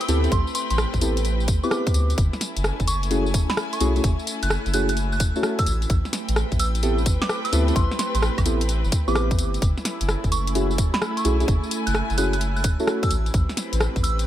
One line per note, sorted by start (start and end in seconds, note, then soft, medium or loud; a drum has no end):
0.00 2.14 A3 medium
0.00 2.18 C4 medium
0.00 2.14 E4 medium
0.00 2.14 G4 medium
0.00 2.14 B4 loud
0.00 2.97 B4 medium
0.00 2.18 G5 medium
0.00 0.08 E6 medium
0.00 closed hi-hat medium
0.00 tambourine soft
0.08 0.28 D2 loud
0.08 0.20 B3 loud
0.08 0.20 C4 medium
0.08 0.20 E4 medium
0.08 0.20 G4 medium
0.08 0.20 A4 loud
0.08 closed hi-hat medium
0.08 tambourine medium
0.24 0.32 B3 medium
0.24 0.32 C4 medium
0.24 0.32 E4 medium
0.24 0.32 G4 medium
0.24 0.32 A4 medium
0.24 closed hi-hat soft
0.24 tambourine soft
0.32 0.43 A1 loud
0.32 0.46 C6 medium
0.32 kick loud
0.32 closed hi-hat medium
0.32 tambourine soft
0.47 tambourine soft
0.55 0.65 C6 loud
0.55 closed hi-hat loud
0.55 tambourine medium
0.70 0.86 A1 medium
0.70 0.76 C6 medium
0.70 closed hi-hat medium
0.70 tambourine soft
0.78 cross-stick loud
0.78 tambourine soft
0.94 1.50 A1 loud
0.94 kick medium
0.94 closed hi-hat soft
0.94 tambourine soft
1.01 1.17 B3 medium
1.01 1.17 C4 medium
1.01 1.17 E4 medium
1.01 1.17 G4 medium
1.01 1.17 A4 medium
1.01 closed hi-hat medium
1.01 tambourine medium
1.17 closed hi-hat medium
1.17 tambourine soft
1.25 closed hi-hat medium
1.25 tambourine soft
1.40 tambourine soft
1.48 1.60 G1 medium
1.48 kick loud
1.48 closed hi-hat loud
1.48 tambourine medium
1.63 2.17 B3 medium
1.63 2.17 C4 medium
1.63 2.17 E4 medium
1.63 2.17 G4 medium
1.63 2.17 B4 loud
1.63 1.95 D6 medium
1.63 tambourine soft
1.71 cross-stick loud
1.71 tambourine soft
1.87 kick loud
1.87 closed hi-hat medium
1.87 tambourine soft
1.94 2.14 D2 loud
1.94 closed hi-hat medium
1.94 tambourine medium
2.10 closed hi-hat soft
2.10 tambourine soft
2.18 2.29 F#1 loud
2.18 5.63 C#4 medium
2.18 6.53 E4 medium
2.18 14.27 E4 medium
2.18 5.63 A4 medium
2.18 5.63 G#5 medium
2.18 kick loud
2.18 closed hi-hat medium
2.18 tambourine soft
2.33 snare soft
2.33 tambourine soft
2.41 snare soft
2.41 closed hi-hat loud
2.41 tambourine medium
2.57 2.72 F#1 medium
2.57 5.67 G#5 medium
2.57 closed hi-hat medium
2.57 tambourine soft
2.64 cross-stick loud
2.64 tambourine soft
2.74 6.36 A3 medium
2.80 3.36 F#1 loud
2.80 kick medium
2.80 closed hi-hat soft
2.80 tambourine soft
2.87 3.02 C#6 loud
2.87 closed hi-hat medium
2.87 tambourine medium
3.03 closed hi-hat medium
3.03 tambourine soft
3.11 3.26 A3 medium
3.11 3.26 C#4 medium
3.11 3.26 E4 medium
3.11 3.26 F#4 medium
3.11 3.26 G#4 loud
3.11 closed hi-hat medium
3.11 tambourine soft
3.26 tambourine soft
3.34 3.46 E1 medium
3.34 kick loud
3.34 closed hi-hat loud
3.34 tambourine medium
3.49 3.70 B5 medium
3.49 snare medium
3.49 tambourine soft
3.57 cross-stick loud
3.57 tambourine soft
3.73 3.80 C#6 medium
3.73 closed hi-hat medium
3.73 tambourine soft
3.80 4.00 B1 loud
3.80 3.92 A3 medium
3.80 3.92 C#4 medium
3.80 3.92 E4 medium
3.80 3.92 F#4 medium
3.80 3.92 G#4 loud
3.80 closed hi-hat medium
3.80 tambourine medium
3.96 4.04 A3 medium
3.96 4.04 C#4 medium
3.96 4.04 E4 medium
3.96 4.04 F#4 medium
3.96 4.04 G#4 medium
3.96 closed hi-hat soft
3.96 tambourine soft
4.04 4.15 F#1 loud
4.04 kick loud
4.04 closed hi-hat medium
4.04 tambourine soft
4.19 tambourine soft
4.27 closed hi-hat loud
4.27 tambourine medium
4.43 4.58 F#1 medium
4.43 4.50 F#6 medium
4.43 closed hi-hat medium
4.43 tambourine soft
4.50 cross-stick loud
4.50 tambourine soft
4.66 5.22 F#1 loud
4.66 closed hi-hat soft
4.66 tambourine soft
4.74 4.89 A3 medium
4.74 4.89 C#4 medium
4.74 4.89 E4 medium
4.74 4.89 F#4 medium
4.74 4.89 G#4 medium
4.74 4.84 F#6 medium
4.74 closed hi-hat medium
4.74 tambourine medium
4.89 4.94 F#6 medium
4.89 closed hi-hat medium
4.89 tambourine soft
4.97 closed hi-hat medium
4.97 tambourine soft
5.12 5.20 F#6 loud
5.12 tambourine soft
5.20 5.32 E1 medium
5.20 kick loud
5.20 closed hi-hat loud
5.20 tambourine medium
5.36 5.66 A3 medium
5.36 5.66 C#4 medium
5.36 5.66 E4 medium
5.36 5.66 F#4 medium
5.36 5.66 A4 loud
5.36 tambourine soft
5.43 cross-stick loud
5.43 tambourine soft
5.59 5.73 E6 medium
5.59 kick loud
5.59 closed hi-hat medium
5.59 tambourine soft
5.66 5.86 A1 loud
5.66 9.58 A3 medium
5.66 9.62 C4 medium
5.66 9.58 G4 medium
5.66 9.58 B4 medium
5.66 closed hi-hat medium
5.66 tambourine medium
5.82 closed hi-hat soft
5.82 tambourine soft
5.90 6.01 A1 loud
5.90 kick loud
5.90 closed hi-hat medium
5.90 tambourine soft
6.02 9.62 G5 medium
6.02 snare soft
6.02 tambourine soft
6.13 snare medium
6.13 closed hi-hat loud
6.13 tambourine medium
6.29 6.44 A1 medium
6.29 closed hi-hat medium
6.29 tambourine soft
6.36 cross-stick loud
6.36 tambourine soft
6.45 10.56 B4 medium
6.52 7.08 A1 loud
6.52 kick medium
6.52 closed hi-hat soft
6.52 tambourine soft
6.59 6.74 E6 medium
6.59 closed hi-hat loud
6.59 tambourine medium
6.75 closed hi-hat medium
6.75 tambourine soft
6.83 6.99 B3 medium
6.83 6.99 C4 medium
6.83 6.99 E4 medium
6.83 6.99 G4 medium
6.83 6.99 A4 loud
6.83 closed hi-hat medium
6.83 tambourine soft
6.98 tambourine soft
7.06 7.18 G1 medium
7.06 kick loud
7.06 closed hi-hat loud
7.06 tambourine medium
7.22 7.42 D6 medium
7.22 snare medium
7.22 tambourine soft
7.29 cross-stick loud
7.29 tambourine soft
7.45 7.52 E6 medium
7.45 closed hi-hat medium
7.45 tambourine soft
7.53 7.72 D2 loud
7.53 7.64 B3 loud
7.53 7.64 C4 medium
7.53 7.64 E4 medium
7.53 7.64 G4 medium
7.53 7.64 A4 loud
7.53 closed hi-hat loud
7.53 tambourine medium
7.68 7.76 B3 medium
7.68 7.76 C4 medium
7.68 7.76 E4 medium
7.68 7.76 G4 medium
7.68 7.76 A4 medium
7.68 closed hi-hat soft
7.68 tambourine soft
7.76 7.87 A1 loud
7.76 7.90 C6 medium
7.76 kick loud
7.76 closed hi-hat medium
7.76 tambourine soft
7.91 snare soft
7.91 tambourine soft
7.99 8.09 C6 medium
7.99 snare medium
7.99 closed hi-hat loud
7.99 tambourine medium
8.15 8.30 A1 loud
8.15 8.20 C6 medium
8.15 closed hi-hat medium
8.15 tambourine soft
8.22 cross-stick loud
8.22 tambourine soft
8.38 8.84 A1 loud
8.38 kick medium
8.38 closed hi-hat soft
8.38 tambourine soft
8.38 high woodblock medium
8.46 8.61 B3 medium
8.46 8.61 C4 medium
8.46 8.61 E4 medium
8.46 8.61 G4 medium
8.46 8.61 A4 medium
8.46 closed hi-hat loud
8.46 tambourine medium
8.61 closed hi-hat medium
8.61 tambourine soft
8.69 closed hi-hat medium
8.69 tambourine soft
8.84 8.90 G1 medium
8.84 tambourine soft
8.92 kick loud
8.92 closed hi-hat loud
8.92 tambourine medium
9.08 9.40 A1 loud
9.08 9.61 B3 medium
9.08 9.61 C4 medium
9.08 9.61 E4 medium
9.08 9.61 G4 medium
9.08 9.61 B4 loud
9.08 9.39 D6 medium
9.08 tambourine soft
9.15 cross-stick loud
9.15 tambourine soft
9.31 kick loud
9.31 closed hi-hat medium
9.31 tambourine soft
9.39 9.58 G1 medium
9.39 closed hi-hat medium
9.39 tambourine medium
9.54 closed hi-hat soft
9.54 tambourine soft
9.62 9.74 F#1 loud
9.62 13.07 C#4 medium
9.62 14.27 E4 medium
9.62 13.07 A4 medium
9.62 13.07 G#5 medium
9.62 kick loud
9.62 closed hi-hat medium
9.62 tambourine soft
9.78 snare soft
9.78 tambourine soft
9.85 snare medium
9.85 closed hi-hat loud
9.85 tambourine medium
10.01 10.16 F#1 loud
10.01 closed hi-hat medium
10.01 tambourine soft
10.09 cross-stick loud
10.09 tambourine soft
10.22 10.80 F#1 loud
10.22 14.27 A3 medium
10.22 kick medium
10.22 closed hi-hat soft
10.22 tambourine soft
10.32 10.46 C#6 loud
10.32 closed hi-hat loud
10.32 tambourine medium
10.47 closed hi-hat medium
10.47 tambourine soft
10.55 10.71 A3 medium
10.55 10.71 C#4 medium
10.55 10.71 E4 medium
10.55 10.71 F#4 medium
10.55 10.71 G#4 medium
10.55 closed hi-hat medium
10.55 tambourine soft
10.71 tambourine soft
10.78 10.90 E1 medium
10.78 kick loud
10.78 closed hi-hat loud
10.78 tambourine medium
10.94 11.14 B5 medium
10.94 snare medium
10.94 tambourine soft
11.02 cross-stick loud
11.02 tambourine soft
11.15 13.11 G#5 medium
11.15 11.24 C#6 medium
11.15 closed hi-hat medium
11.15 tambourine soft
11.25 11.44 B1 loud
11.25 11.37 A3 medium
11.25 11.37 C#4 medium
11.25 11.37 E4 medium
11.25 11.37 F#4 medium
11.25 11.37 G#4 loud
11.25 closed hi-hat loud
11.25 tambourine medium
11.40 11.48 A3 medium
11.40 11.48 C#4 medium
11.40 11.48 E4 medium
11.40 11.48 F#4 medium
11.40 11.48 G#4 medium
11.40 closed hi-hat soft
11.40 tambourine soft
11.48 11.60 F#1 loud
11.48 kick loud
11.48 closed hi-hat medium
11.48 tambourine soft
11.63 tambourine soft
11.71 closed hi-hat loud
11.71 tambourine medium
11.87 12.02 F#1 medium
11.87 11.94 F#6 loud
11.87 closed hi-hat medium
11.87 tambourine soft
11.95 cross-stick loud
11.95 tambourine soft
12.10 12.66 F#1 loud
12.10 closed hi-hat soft
12.10 tambourine soft
12.18 12.33 A3 medium
12.18 12.33 C#4 medium
12.18 12.33 E4 medium
12.18 12.33 F#4 medium
12.18 12.33 G#4 medium
12.18 12.28 F#6 medium
12.18 closed hi-hat loud
12.18 tambourine medium
12.33 12.38 F#6 medium
12.33 closed hi-hat medium
12.33 tambourine soft
12.41 closed hi-hat medium
12.41 tambourine soft
12.56 12.64 F#6 loud
12.56 tambourine soft
12.64 12.76 E1 medium
12.64 kick loud
12.64 closed hi-hat loud
12.64 tambourine medium
12.80 13.10 A3 medium
12.80 13.10 C#4 medium
12.80 13.10 E4 medium
12.80 13.10 F#4 medium
12.80 13.10 A4 loud
12.80 tambourine soft
12.87 cross-stick loud
12.87 tambourine soft
13.03 13.17 E6 medium
13.03 kick loud
13.03 closed hi-hat medium
13.03 tambourine soft
13.11 13.30 A1 loud
13.11 14.27 C4 medium
13.11 14.27 G4 medium
13.11 14.27 B4 loud
13.11 closed hi-hat medium
13.11 tambourine medium
13.26 closed hi-hat soft
13.26 tambourine soft
13.34 13.46 A1 loud
13.34 kick loud
13.34 closed hi-hat medium
13.34 tambourine soft
13.49 snare soft
13.49 tambourine soft
13.57 14.27 B4 medium
13.57 snare medium
13.57 closed hi-hat loud
13.57 tambourine medium
13.73 13.88 A1 loud
13.73 closed hi-hat medium
13.73 tambourine soft
13.80 cross-stick loud
13.80 tambourine soft
13.96 14.27 A1 loud
13.96 kick medium
13.96 closed hi-hat soft
13.96 tambourine soft
14.03 14.18 E6 loud
14.03 closed hi-hat medium
14.03 tambourine medium
14.17 14.27 G5 medium
14.17 closed hi-hat medium
14.17 tambourine soft